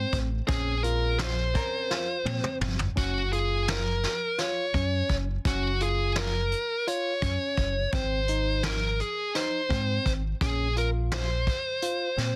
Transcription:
0.00 0.28 C4 medium
0.00 0.17 C5 medium
0.13 0.40 A1 medium
0.13 kick medium
0.13 closed hi-hat medium
0.47 1.57 A#1 medium
0.47 1.47 C4 medium
0.47 0.74 C#4 medium
0.47 1.48 C#4 medium
0.47 0.81 G#4 medium
0.47 1.48 G#4 medium
0.47 kick loud
0.47 closed hi-hat medium
0.83 1.35 F4 medium
0.83 1.19 A#4 medium
0.83 closed hi-hat medium
1.19 2.57 C5 medium
1.19 snare loud
1.19 closed hi-hat medium
1.55 2.05 C4 medium
1.55 2.05 C#4 medium
1.55 2.05 A#4 medium
1.55 kick medium
1.55 closed hi-hat medium
1.90 2.16 F4 medium
1.90 snare medium
2.25 2.39 A#2 medium
2.25 2.77 C4 medium
2.25 high tom medium
2.44 mid tom medium
2.61 2.88 G1 medium
2.61 mid tom medium
2.79 floor tom medium
2.96 4.05 F#1 medium
2.96 3.22 C#4 medium
2.96 3.31 F#4 medium
2.96 kick medium
2.96 closed hi-hat medium
3.32 3.84 F4 medium
3.32 3.69 G#4 medium
3.32 closed hi-hat soft
3.68 4.39 A#4 medium
3.68 snare loud
3.68 closed hi-hat medium
4.03 snare soft
4.03 closed hi-hat medium
4.38 4.64 F4 medium
4.38 5.15 C#5 medium
4.38 snare soft
4.38 closed hi-hat medium
4.74 5.01 F#2 medium
4.74 5.26 C#4 medium
4.74 kick medium
4.74 closed hi-hat soft
5.09 5.37 F#1 medium
5.09 kick medium
5.09 closed hi-hat medium
5.45 6.53 F#1 medium
5.45 5.71 C#4 medium
5.45 5.82 F#4 medium
5.45 kick loud
5.45 closed hi-hat medium
5.80 6.32 F4 medium
5.80 6.15 G#4 medium
5.80 closed hi-hat medium
6.16 6.88 A#4 medium
6.16 snare medium
6.16 closed hi-hat medium
6.52 closed hi-hat medium
6.87 7.13 F4 medium
6.87 7.90 C#5 medium
6.87 closed hi-hat medium
7.22 7.36 F#2 medium
7.22 7.73 C#4 medium
7.22 kick medium
7.22 closed hi-hat medium
7.57 7.85 F#1 medium
7.57 kick medium
7.57 closed hi-hat medium
7.92 9.00 G#1 medium
7.92 8.19 C4 medium
7.92 8.67 C5 medium
7.92 kick loud
7.92 closed hi-hat medium
8.28 8.80 D#4 medium
8.28 closed hi-hat medium
8.63 9.01 A#4 medium
8.63 snare loud
8.63 closed hi-hat medium
9.00 9.33 G#4 medium
9.00 closed hi-hat soft
9.35 9.60 D#4 medium
9.35 10.11 C5 medium
9.35 snare soft
9.35 closed hi-hat medium
9.69 9.97 G#2 medium
9.69 10.21 C4 medium
9.69 kick medium
9.69 closed hi-hat soft
10.06 10.33 G#1 medium
10.06 kick medium
10.06 closed hi-hat medium
10.41 11.48 A#1 medium
10.41 10.67 C#4 medium
10.41 10.75 G#4 medium
10.41 kick loud
10.41 closed hi-hat medium
10.76 11.27 F4 medium
10.76 10.87 A#4 medium
10.76 closed hi-hat medium
11.12 12.36 C5 medium
11.12 snare loud
11.12 closed hi-hat medium
11.47 kick medium
11.47 closed hi-hat medium
11.82 12.08 F4 medium
11.82 closed hi-hat medium
12.18 12.31 A#2 medium
12.18 12.36 C4 medium
12.18 snare soft
12.18 closed hi-hat medium

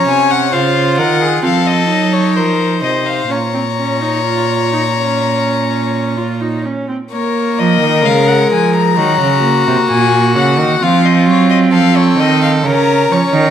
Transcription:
0.00 0.50 C#4 medium
0.00 0.53 C#5 medium
0.07 0.54 C3 medium
0.07 0.32 G#5 medium
0.31 0.54 F#5 medium
0.51 0.99 C#3 medium
0.51 1.44 F4 medium
0.51 0.99 C5 medium
0.51 0.97 F5 medium
0.97 1.43 D#3 medium
0.97 1.23 A#4 medium
0.97 1.42 F#5 medium
1.21 1.44 G#4 medium
1.42 1.91 F3 medium
1.42 1.89 C4 medium
1.42 2.34 A4 medium
1.42 1.68 F5 medium
1.67 2.15 D#5 medium
1.89 2.37 F#3 medium
1.89 3.27 D#4 medium
2.13 2.38 C#5 medium
2.35 2.84 F3 medium
2.35 2.82 A#4 medium
2.35 2.83 C5 medium
2.82 3.29 C3 medium
2.82 3.33 C5 medium
2.82 3.08 D#5 medium
3.06 3.33 F5 medium
3.29 6.60 A#2 medium
3.29 3.37 C#4 medium
3.29 6.64 C#5 medium
3.29 6.64 A#5 medium
3.54 3.62 C4 medium
3.77 4.02 C#4 medium
4.01 4.24 D#4 medium
4.25 4.72 F4 medium
4.72 4.80 D#4 medium
4.97 6.19 C#4 medium
6.17 6.42 F4 medium
6.41 6.66 D#4 medium
6.65 6.88 C#4 medium
6.88 6.96 C4 medium
7.11 8.06 A#3 medium
7.11 8.94 A#4 medium
7.11 7.60 C#5 medium
7.57 7.79 F3 medium
7.57 8.07 D#5 medium
7.80 8.05 D#3 medium
8.03 8.50 C#3 medium
8.03 8.99 G#3 medium
8.03 8.29 F5 medium
8.28 8.51 F#5 medium
8.51 8.99 F3 medium
8.51 8.74 G#5 medium
8.75 9.88 A#5 medium
8.97 9.20 D#3 medium
8.97 9.43 F#3 medium
8.97 10.84 F#4 medium
9.21 9.66 C#3 medium
9.43 10.78 A#3 medium
9.67 9.75 C3 medium
9.89 10.37 A#2 medium
9.89 10.35 G#5 medium
10.35 10.60 C#3 medium
10.35 10.84 F#5 medium
10.58 10.80 D#3 medium
10.80 11.27 F3 medium
10.80 12.61 C4 medium
10.80 11.73 F4 medium
10.80 11.06 F5 medium
11.05 11.27 D#5 medium
11.26 11.73 F#3 medium
11.26 11.50 C#5 medium
11.50 11.58 D#5 medium
11.72 12.17 F3 medium
11.72 12.68 A4 medium
11.72 11.98 F5 medium
11.97 12.21 C#5 medium
12.18 12.65 D#3 medium
12.18 12.42 D#5 medium
12.42 12.50 F5 medium
12.63 13.09 C#3 medium
12.63 13.10 C#4 medium
12.63 13.13 A#4 medium
12.63 13.50 A#5 medium
13.09 13.17 F3 medium
13.09 13.50 C#4 medium
13.09 13.50 C#5 medium
13.33 13.50 D#3 medium

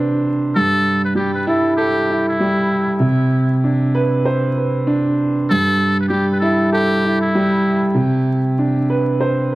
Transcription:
0.00 0.57 C3 medium
0.00 0.56 D4 medium
0.00 0.56 B4 medium
0.00 0.54 C5 medium
0.55 2.10 G2 medium
0.55 1.02 A4 loud
1.04 1.15 B4 medium
1.15 2.39 G3 medium
1.15 1.33 G4 medium
1.34 1.45 B4 medium
1.47 2.09 E4 loud
1.47 1.75 A4 medium
1.77 2.24 G4 medium
1.77 3.02 A4 medium
2.10 3.02 E4 medium
2.28 2.98 E4 medium
2.40 3.02 G3 medium
3.00 4.55 C3 loud
3.64 4.86 D4 medium
3.95 4.56 B4 loud
4.25 5.49 C5 medium
4.57 5.50 B4 medium
4.87 5.49 D4 loud
5.50 7.05 G2 medium
5.50 5.97 A4 loud
6.01 6.07 B4 medium
6.08 7.34 G3 medium
6.08 6.27 G4 medium
6.32 6.39 B4 medium
6.40 7.04 E4 loud
6.40 6.69 A4 medium
6.73 7.20 G4 loud
6.73 7.97 A4 medium
7.05 7.97 E4 medium
7.21 7.92 E4 medium
7.35 7.97 G3 loud
7.95 9.50 C3 medium
8.59 9.55 D4 medium
8.90 9.51 B4 medium
9.20 9.55 C5 medium

